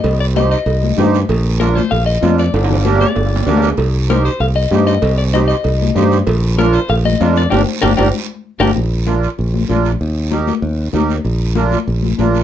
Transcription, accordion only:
\new Staff \with { instrumentName = "Accordion" } { \time 4/4 \key bes \major \tempo 4 = 193 r4 <ees' g' c''>8 r4. <ees' g' c''>8 r8 | r4 <d' f' bes'>8 r4. <d' f' bes'>8 r8 | r4 <d' g' bes'>8 r4. <d' g' bes'>8 r8 | r4 <ees' g' c''>8 r4. <ees' g' c''>8 r8 |
r4 <ees' g' c''>8 r4. <ees' g' c''>8 r8 | r4 <d' f' bes'>8 r4. <d' f' bes'>8 r8 | <d' g' bes'>8 r8 <d' g' bes'>8 <d' g' bes'>8 r4. <d' g' bes'>8 | r4 <d' f' bes'>8 r4. <d' f' bes'>8 r8 |
r4 <ees' g' bes'>8 r4. <ees' g' bes'>8 r8 | r4 <d' f' bes'>8 r4. <d' f' bes'>8 r8 | }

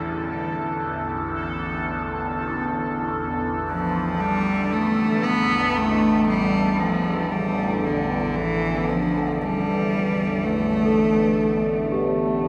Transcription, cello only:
\new Staff \with { instrumentName = "Cello" } { \clef bass \time 4/4 \key c \major \tempo 4 = 58 r2. r8 f8 | g8 a8 b8 a8 g8 f8 g8 d8 | e8 f8 g4 a4. r8 | }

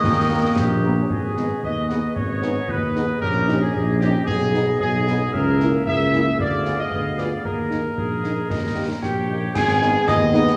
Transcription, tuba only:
\new Staff \with { instrumentName = "Tuba" } { \clef bass \time 2/4 \key gis \minor \tempo 4 = 114 dis,4 ais,,4 | gis,,4 dis,4 | gis,,4 dis,4 | ais,,4 ais,,4 |
b,,4 b,,4 | cis,4 cis,4 | d,4 d,4 | dis,4 ais,,4 |
dis,4 ais,,4 | gis,,4 dis,4 | }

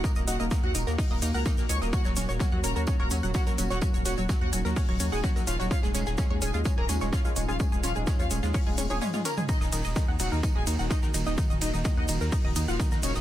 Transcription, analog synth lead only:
\new Staff \with { instrumentName = "Analog synth lead" } { \clef bass \time 4/4 \key ees \minor \tempo 4 = 127 bes16 bes16 ges'16 bes16 bes16 ges'16 bes16 bes16 r16 bes16 bes16 bes'16 bes16 bes16 des''16 bes16 | ges'16 ges16 ges16 r16 ges16 ges16 bes'16 ges16 ges16 bes'16 ges16 ges16 ges'16 ges16 ges16 ges'16 | ges16 ges16 ges'16 ges16 ges16 ges'16 ges16 ges16 r16 ges16 ges16 aes'16 ges16 ges16 f'16 ges16 | f'16 aes16 aes16 r16 aes16 aes16 aes'16 aes16 aes16 bes'16 aes16 aes16 f'16 aes16 aes16 f'16 |
aes16 aes16 f'16 aes16 aes16 f'16 aes16 aes16 r16 aes16 aes16 aes'16 aes16 aes16 bes'16 aes16 | ees'16 ees16 ees16 r16 ees16 ees16 ges'16 ees16 r16 aes'16 ees16 ees16 ees'16 ees16 ees16 ees'16 | ees16 ees16 ees'16 ees16 ees16 ees'16 ees16 ees16 r16 ees16 ees16 f'16 ees16 ees16 des'16 ees16 | }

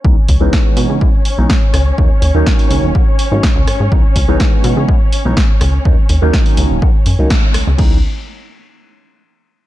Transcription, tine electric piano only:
\new Staff \with { instrumentName = "Tine electric piano" } { \time 4/4 \key cis \dorian \tempo 4 = 124 <e gis b cis' dis'>16 r8 <e gis b cis' dis'>4~ <e gis b cis' dis'>16 <e gis b cis' e'>16 r8 <e gis b cis' dis'>16 r4 | <dis fis ais cis' dis'>16 r8 <dis fis ais cis' dis'>4~ <dis fis ais cis' dis'>16 <dis fis ais cis' fis'>16 r8 <dis fis ais cis' dis'>16 r4 | <e gis b cis' dis'>16 r8 <e gis b cis' dis'>4~ <e gis b cis' dis'>16 <e gis b cis' e'>16 r8 <e gis b cis' dis'>16 r4 | <dis fis ais cis' dis'>16 r8 <dis fis ais cis' dis'>4~ <dis fis ais cis' dis'>16 <dis fis ais cis' fis'>16 r8 <dis fis ais cis' dis'>16 r4 |
<e gis b cis' dis'>8 r2. r8 | }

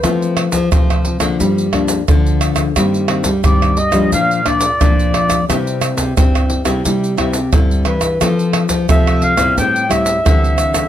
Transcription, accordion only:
\new Staff \with { instrumentName = "Accordion" } { \time 4/4 \key f \major \tempo 4 = 88 r1 | r4 d''8 ees''8 f''8 d''4. | r1 | r4 e''8 f''8 g''8 e''4. | }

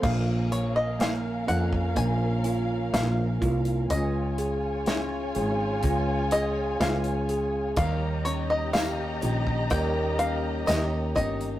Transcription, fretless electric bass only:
\new Staff \with { instrumentName = "Fretless electric bass" } { \clef bass \time 4/4 \key bes \minor \tempo 4 = 62 bes,,4. f,8 bes,,4 bes,,8 c,8 | des,4. aes,,8 des,4 des,4 | ees,4. bes,,8 ees,4 ees,8 g,,8 | }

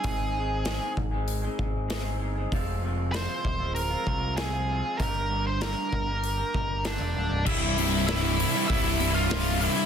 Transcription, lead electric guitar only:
\new Staff \with { instrumentName = "Lead electric guitar" } { \time 4/4 \key c \mixolydian \tempo 4 = 97 aes'4. r2 r8 | r4 c''4 bes'4 aes'4 | bes'8. c''16 bes'2 <d' d''>4 | <e' e''>4 <e' e''>4 <e' e''>8. <f' f''>8. <e' e''>8 | }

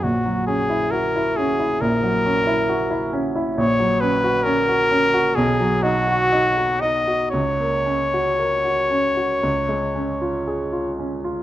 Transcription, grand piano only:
\new Staff \with { instrumentName = "Grand piano" } { \time 4/4 \key fis \mixolydian \tempo 4 = 65 ais,,16 fis16 cis'16 e'16 fis'16 e'16 cis'16 e'16 ais,,16 fis16 cis'16 e'16 fis'16 e'16 cis'16 e'16 | \key fis \major ais,,16 fis16 cis'16 fis'16 cis'16 fis'16 cis'16 fis'16 b,,16 fis16 dis'16 fis'16 dis'16 fis'16 dis'16 fis'16 | cis,16 ais16 cis'16 fis'16 ais'16 fis'16 cis'16 fis'16 cis,16 gis16 cis'16 eis'16 gis'16 eis'16 cis'16 eis'16 | }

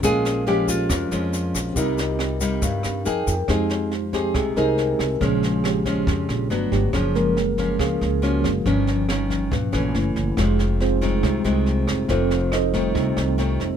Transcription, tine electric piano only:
<<
  \new Staff \with { instrumentName = "Tine electric piano" } { \time 4/4 \key f \minor \tempo 4 = 139 <des' aes' bes' f''>1 | <c' g' bes' ees''>2. <ees' aes' bes' g''>4 | r4. g'8 aes'8 bes'4. | aes'4 g'4 r4. g'8 |
aes'8 bes'4. aes'4 ges'4 | r1 | <f' aes'>4 <c' f' aes' c''>8 r2 r8 | <c' f' a' c''>4 <ees' a' c'' ees''>8 r2 r8 | }
  \new Staff \with { instrumentName = "Tine electric piano" } { \clef bass \time 4/4 \key f \minor r1 | r1 | <aes ees' g'>1 | <des aes>8 r2 r8 <fis a b>8 r8 |
r8 <f aes bes>8 r2 <f aes bes>8 r8 | <f g des'>4. r4. <a fes'>4 | <aes ees'>4. <g aes ees'>8 r2 | r4. <g a ees'>2~ <g a ees'>8 | }
>>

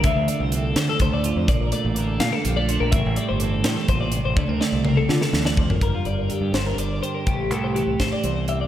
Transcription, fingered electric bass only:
\new Staff \with { instrumentName = "Fingered electric bass" } { \clef bass \time 6/8 \key d \minor \tempo 4. = 83 d,16 d,16 r16 c,8. d16 r16 d,8. f,16 | bes,,16 bes,,16 r16 a,,8. bes,16 r16 bes,,8. bes,,16 | a,,16 a,,16 r16 g,,8. a,16 r16 a,,8. a,,16 | d,16 d,16 r16 c,8. d16 r16 d,8. gis,,16 |
g,,16 r16 g,,8 r16 g,16 g,,8 g,,8 r8 | a,,8 c,8. c,16 a,,16 r16 c,4 | }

